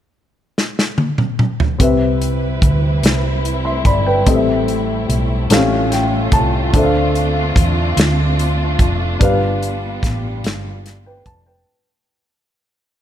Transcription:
0.58 snare medium
0.79 snare medium
0.98 high tom medium
1.18 mid tom medium
1.39 mid tom medium
1.60 floor tom medium
1.78 2.58 C2 medium
1.78 2.99 C3 medium
1.78 6.70 G3 medium
1.78 4.22 C4 soft
1.78 5.46 C4 medium
1.78 5.47 E4 medium
1.78 4.22 G4 soft
1.78 4.24 B4 medium
1.78 3.42 B4 soft
1.78 3.42 E5 medium
1.78 kick medium
1.78 closed hi-hat medium
2.22 closed hi-hat soft
2.62 3.00 D2 medium
2.62 kick medium
2.62 closed hi-hat soft
3.03 3.81 C2 medium
3.03 snare medium
3.03 closed hi-hat medium
3.45 closed hi-hat soft
3.65 3.84 E5 soft
3.65 3.84 C6 soft
3.85 4.23 G1 medium
3.85 4.05 D5 soft
3.85 4.05 B5 medium
3.85 kick medium
3.85 closed hi-hat soft
4.07 4.46 B4 soft
4.07 4.45 G5 medium
4.26 5.05 A1 medium
4.26 5.46 A2 medium
4.26 9.17 A3 medium
4.26 5.48 C4 medium
4.26 5.49 G4 soft
4.26 5.50 A4 soft
4.26 4.34 D#5 soft
4.26 kick medium
4.26 closed hi-hat medium
4.35 5.54 E5 medium
4.68 closed hi-hat soft
5.09 5.47 B1 medium
5.09 closed hi-hat soft
5.49 6.28 A1 medium
5.49 6.70 A2 medium
5.49 5.56 C4 soft
5.49 6.72 C#4 medium
5.49 11.63 F4 medium
5.49 6.74 G4 medium
5.49 6.73 A4 medium
5.49 6.74 F5 medium
5.49 snare medium
5.49 closed hi-hat medium
5.56 6.77 C#4 medium
5.92 6.30 G5 medium
5.92 snare soft
5.92 closed hi-hat soft
6.32 6.70 C2 medium
6.32 6.71 A5 medium
6.32 kick medium
6.32 closed hi-hat soft
6.73 7.52 D2 medium
6.73 7.94 D3 medium
6.73 9.18 C4 medium
6.73 9.16 D4 medium
6.73 11.64 D4 medium
6.73 9.17 A4 medium
6.73 9.18 C5 soft
6.73 6.82 E5 soft
6.73 kick medium
6.73 closed hi-hat medium
6.84 9.21 F5 medium
7.16 closed hi-hat soft
7.56 7.94 E2 medium
7.56 kick medium
7.56 closed hi-hat soft
7.97 8.75 D2 medium
7.97 snare medium
7.97 closed hi-hat medium
8.39 closed hi-hat soft
8.79 9.17 F1 medium
8.79 kick medium
8.79 closed hi-hat soft
9.19 9.99 G1 medium
9.19 10.40 G2 medium
9.19 11.65 G3 medium
9.19 11.65 B3 medium
9.19 11.63 D4 medium
9.19 11.63 G4 soft
9.19 10.42 B4 medium
9.19 kick medium
9.19 closed hi-hat medium
9.23 10.43 F5 medium
9.63 closed hi-hat soft
10.03 10.41 A1 medium
10.03 kick medium
10.03 snare soft
10.03 closed hi-hat soft
10.44 11.22 G1 medium
10.44 snare medium
10.44 closed hi-hat medium
10.86 snare soft
10.86 closed hi-hat soft
11.06 11.26 B4 soft
11.06 11.25 G5 soft
11.26 11.64 F1 medium
11.26 11.46 A5 medium
11.26 kick medium
11.26 closed hi-hat soft
11.47 11.86 B4 soft
11.47 11.86 G5 medium

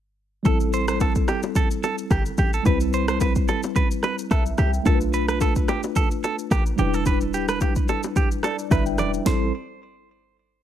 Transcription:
0.43 1.24 A1 loud
0.43 2.60 G3 medium
0.43 2.61 C4 medium
0.43 2.62 E4 medium
0.43 0.58 A4 medium
0.43 kick loud
0.43 low conga medium
0.43 shaker medium
0.48 2.63 A4 medium
0.60 shaker medium
0.73 0.85 C5 medium
0.73 shaker medium
0.88 0.98 C5 medium
0.88 cross-stick loud
0.88 shaker soft
1.00 1.13 A4 medium
1.00 kick loud
1.00 high bongo medium
1.00 shaker medium
1.15 kick medium
1.15 shaker soft
1.28 1.40 G4 medium
1.28 cross-stick medium
1.28 low bongo medium
1.28 shaker medium
1.43 low bongo medium
1.43 shaker soft
1.55 1.68 A4 medium
1.55 kick loud
1.55 low conga medium
1.55 shaker medium
1.71 shaker medium
1.83 1.95 A4 medium
1.83 high bongo soft
1.83 low bongo medium
1.83 shaker medium
1.98 shaker medium
2.11 2.32 G1 medium
2.11 2.23 G4 medium
2.11 kick loud
2.11 cross-stick loud
2.11 high bongo medium
2.11 shaker medium
2.26 shaker soft
2.38 2.60 A1 medium
2.38 2.50 G4 medium
2.38 low conga medium
2.38 shaker medium
2.53 2.63 A4 medium
2.53 shaker soft
2.63 3.44 C2 loud
2.63 4.80 G3 medium
2.63 4.81 C4 medium
2.63 4.82 E4 medium
2.63 2.78 B4 medium
2.63 kick loud
2.63 low conga medium
2.63 shaker medium
2.68 4.83 B4 medium
2.80 shaker medium
2.93 3.05 C5 medium
2.93 shaker medium
3.08 3.18 C5 medium
3.08 cross-stick loud
3.08 shaker medium
3.20 3.33 B4 medium
3.20 kick medium
3.20 high bongo medium
3.20 shaker medium
3.35 kick medium
3.35 shaker medium
3.48 3.60 A4 medium
3.48 low bongo medium
3.48 shaker medium
3.63 low bongo medium
3.63 shaker soft
3.76 3.88 B4 medium
3.76 kick loud
3.76 low conga medium
3.76 shaker medium
3.91 shaker medium
4.03 4.15 B4 medium
4.03 cross-stick medium
4.03 high bongo soft
4.03 low bongo medium
4.03 shaker medium
4.19 shaker medium
4.31 4.52 B1 loud
4.31 4.43 A4 medium
4.31 4.56 E5 medium
4.31 kick loud
4.31 cross-stick loud
4.31 high bongo medium
4.31 shaker medium
4.46 shaker soft
4.58 4.80 C2 medium
4.58 4.70 G4 medium
4.58 4.84 G5 medium
4.58 cross-stick medium
4.58 low conga medium
4.58 shaker medium
4.74 shaker soft
4.83 5.64 B1 loud
4.83 6.73 A3 medium
4.83 6.74 D4 medium
4.83 6.75 F4 medium
4.83 4.98 A4 medium
4.83 kick loud
4.83 low conga medium
4.83 shaker medium
4.88 4.94 A#4 medium
4.95 6.79 B4 medium
5.01 shaker medium
5.13 5.25 B4 medium
5.13 shaker medium
5.28 5.38 B4 medium
5.28 cross-stick loud
5.28 shaker soft
5.41 5.53 A4 medium
5.41 kick medium
5.41 high bongo medium
5.41 shaker medium
5.56 kick medium
5.56 shaker soft
5.68 5.80 G4 medium
5.68 cross-stick medium
5.68 low bongo medium
5.68 shaker medium
5.83 low bongo medium
5.83 shaker soft
5.96 6.08 A4 medium
5.96 kick loud
5.96 low conga medium
5.96 shaker medium
6.11 shaker medium
6.24 6.36 A4 medium
6.24 high bongo medium
6.24 low bongo medium
6.24 shaker medium
6.39 shaker medium
6.51 6.73 A1 medium
6.51 6.63 G4 medium
6.51 kick medium
6.51 cross-stick loud
6.51 high bongo medium
6.51 shaker medium
6.66 shaker medium
6.76 7.65 E1 medium
6.76 8.66 G3 medium
6.76 8.67 D4 medium
6.76 8.68 E4 medium
6.76 6.94 G4 medium
6.76 low conga medium
6.76 shaker medium
6.81 8.69 B4 medium
6.94 7.04 A4 medium
6.94 shaker soft
7.06 7.18 B4 medium
7.06 kick loud
7.06 low conga medium
7.06 shaker medium
7.21 shaker medium
7.34 7.46 G4 medium
7.34 shaker medium
7.49 7.59 B4 medium
7.49 cross-stick loud
7.49 shaker medium
7.61 7.73 G4 medium
7.61 kick medium
7.61 high bongo medium
7.61 shaker medium
7.76 kick medium
7.76 shaker soft
7.88 8.01 A4 medium
7.88 low bongo medium
7.88 shaker medium
8.03 low bongo medium
8.03 shaker soft
8.16 8.28 G4 medium
8.16 kick loud
8.16 low conga medium
8.16 shaker medium
8.31 shaker medium
8.43 8.56 A4 medium
8.43 8.69 D5 medium
8.43 cross-stick medium
8.43 high bongo soft
8.43 low bongo medium
8.43 shaker medium
8.59 shaker medium
8.70 9.00 G1 loud
8.70 9.25 G3 medium
8.70 9.26 D4 medium
8.70 9.25 E4 medium
8.70 8.83 B4 medium
8.70 9.27 B4 medium
8.70 8.85 E5 medium
8.70 kick loud
8.70 cross-stick loud
8.70 high bongo medium
8.70 shaker medium
8.86 9.23 G5 medium
8.86 shaker medium
8.98 9.20 E1 loud
8.98 9.11 D5 medium
8.98 cross-stick medium
8.98 low conga medium
8.98 shaker medium
9.14 shaker soft
9.26 9.52 A1 loud
9.26 9.52 G3 medium
9.26 9.52 C4 medium
9.26 9.52 E4 medium
9.26 9.52 A4 medium
9.26 9.52 C5 medium
9.26 snare loud
9.26 low conga medium

